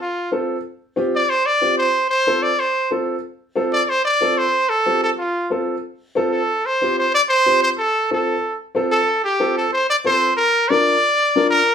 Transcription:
0.02 F4
0.32 C4 F4 A4
0.96 C4 F4 G4
1.16 D5
1.30 C5
1.46 D5
1.62 C4 F4 G4
1.78 C5
2.10 C5
2.27 C4 F4 A4
2.43 D5
2.59 C5
2.91 C4 F4 A4
3.56 C4 F4 A4
3.73 D5
3.86 D5
3.90 C5
4.05 D5
4.21 C4 F4 A4
4.38 C5
4.69 A4
4.86 C4 F4 G4
5.04 A4
5.19 F4
5.50 C4 F4 A4
6.15 C4 F4 A4
6.32 A4
6.66 C5
6.82 C4 F4 G4
6.99 C5
7.14 D5
7.29 C5
7.46 C4 F4 G4
7.63 C5
7.78 A4
8.11 C4 F4 A4
8.75 C4 F4 A4
8.92 A4
9.24 G4
9.40 C4 F4 A4
9.58 A4
9.73 C5
9.90 D5
10.05 C4 F4 A4 C5
10.37 A#4
10.69 D4 F4 A#4 D5
11.36 D4 F4 A#4
11.51 A#4

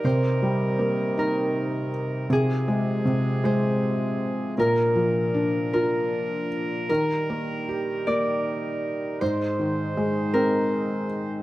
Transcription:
Already playing: A#4 D5
0.03 C3 D#3 C4 C5
0.42 G3
0.79 A#3
1.17 D#4 A#4
2.30 C3 F3 G#4
2.68 G#3
3.05 C3
3.44 G#3 C5
4.58 A#2 D4 A#4
4.96 F3
5.34 D4
5.73 F4 A#4
6.89 D#3 G3 D#4 A#4
7.30 A#3
7.69 G4
8.07 A#3 D5
9.20 G#2 G#3 C5
9.59 D#3
9.97 G#3
10.34 C4 A#4

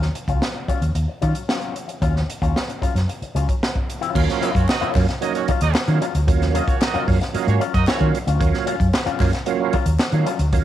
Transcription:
0.02 muted clean electric guitar stroke, snare
0.15 muted clean electric guitar stroke, closed hi-hat
0.28 C#2 F#3 C#4 F4, kick, closed hi-hat
0.42 snare
0.56 muted clean electric guitar stroke
0.68 F#3 C#4 F4, muted fingered electric bass stroke, kick, closed hi-hat
0.81 D#2, muted clean electric guitar stroke, closed hi-hat
0.95 D#2, muted clean electric guitar stroke, closed hi-hat
1.08 muted clean electric guitar stroke
1.22 D#3 F#3 C#4 F4, kick, closed hi-hat
1.35 muted clean electric guitar stroke, closed hi-hat
1.49 F#3 C#4 F4, snare
1.61 closed hi-hat
1.75 muted clean electric guitar stroke, closed hi-hat
1.88 muted clean electric guitar stroke, closed hi-hat
2.02 D#2 F#3 C#4 F4, kick, closed hi-hat
2.16 muted clean electric guitar stroke, snare
2.29 muted clean electric guitar stroke, closed hi-hat
2.42 D#2 F#3 C#4 F4, kick, closed hi-hat
2.56 snare
2.69 muted clean electric guitar stroke, closed hi-hat
2.82 F#3 C#4 F4, muted fingered electric bass stroke, kick, closed hi-hat
2.95 F#2, muted clean electric guitar stroke, snare, closed hi-hat
3.08 muted clean electric guitar stroke, closed hi-hat
3.22 muted fingered electric bass stroke, muted clean electric guitar stroke, closed hi-hat
3.35 C#2 F#3 C#4 F4, closed hi-hat
3.49 muted clean electric guitar stroke, kick, closed hi-hat
3.63 muted clean electric guitar stroke, snare
3.75 muted clean electric guitar stroke, kick
3.90 closed hi-hat
4.01 F#3 C#4 F4, closed hi-hat
4.14 D#2 F#3 A#3 C#4 F4, kick, crash
4.29 snare, closed hi-hat
4.41 F#3 A#3 C#4 D#4 F4 F#4 D#5, closed hi-hat
4.55 F#2 A#3 C#4 F#4 C#5, kick, closed hi-hat
4.68 A#3 D#4 F#4 D#5, muted clean electric guitar stroke, snare, clap
4.81 F#3 C#4 F4, muted fingered electric bass stroke, closed hi-hat
4.94 F#2 F#3 A#3 C#4 F4, muted clean electric guitar stroke, kick, clap, open hi-hat
5.09 muted clean electric guitar stroke, snare, closed hi-hat
5.21 F#3 A#3 C#4 D#4 F#4 D#5, muted clean electric guitar stroke, closed hi-hat
5.35 A#3 C#4 F#4 C#5, muted clean electric guitar stroke, closed hi-hat
5.48 F#3 C#4 F4, muted fingered electric bass stroke, kick, closed hi-hat
5.61 D#2 A#3 D#4 F#4 D#5, muted clean electric guitar stroke, closed hi-hat
5.75 snare, clap
5.87 D#3 F#3 A#3 C#4 F4, muted clean electric guitar stroke, closed hi-hat
6.01 F#3 C#4 F4, closed hi-hat
6.15 D2, muted clean electric guitar stroke, closed hi-hat
6.27 D#2 F#3 A#3 C#4 F4, kick, closed hi-hat
6.42 snare, closed hi-hat
6.54 F#3 A#3 C#4 D#4 F4 F#4 D#5, closed hi-hat
6.68 A#3 C#4 F#4 C#5, kick, closed hi-hat
6.81 A#3 D#4 F#4 D#5, muted clean electric guitar stroke, snare, clap
6.94 F#3 C#4 F4, muted fingered electric bass stroke, closed hi-hat
7.07 F#2 F#3 A#3 C#4 F4, muted clean electric guitar stroke, kick, open hi-hat
7.21 muted clean electric guitar stroke, snare, closed hi-hat
7.33 F#3 A#3 C#4 D#4 F4 F#4 D#5, muted clean electric guitar stroke, muted fingered electric bass stroke, closed hi-hat
7.47 G#2 A#3 C#4 F#4 C#5, muted clean electric guitar stroke, closed hi-hat
7.60 F#3 C#4 F4, closed hi-hat
7.73 F#2 A#3 D#4 F#4 D#5, muted clean electric guitar stroke, kick, closed hi-hat
7.87 F#3 A#3 C#4 F4 F#4 C#5, snare, clap
8.00 D#3 F#3 A#3 C#4 F4, kick, closed hi-hat
8.14 muted clean electric guitar stroke, closed hi-hat
8.27 D2 F#3 C#4 F4, closed hi-hat
8.39 D#2 F#3 A#3 C#4 F4, kick, closed hi-hat
8.54 snare, closed hi-hat
8.66 F#3 C#4 F4, closed hi-hat
8.80 F#2, kick, closed hi-hat
8.92 muted clean electric guitar stroke, snare, clap
9.06 F#3 C#4 F4, muted fingered electric bass stroke, closed hi-hat
9.19 F#2 F#3 A#3 C#4 F4, muted clean electric guitar stroke, kick, clap, open hi-hat
9.33 muted clean electric guitar stroke, snare, closed hi-hat
9.46 F#3 A#3 C#4 F4, muted clean electric guitar stroke, closed hi-hat
9.60 muted clean electric guitar stroke
9.73 F#3 C#4 F4, muted fingered electric bass stroke, kick, closed hi-hat
9.86 D#2, muted clean electric guitar stroke, closed hi-hat
9.99 snare, clap
10.12 D#3 F#3 A#3 C#4 F4, muted clean electric guitar stroke, closed hi-hat
10.26 F#3 C#4 F4, closed hi-hat
10.39 D2, muted clean electric guitar stroke, closed hi-hat
10.52 D#2 F#3 A#3 C#4 F4, kick, closed hi-hat

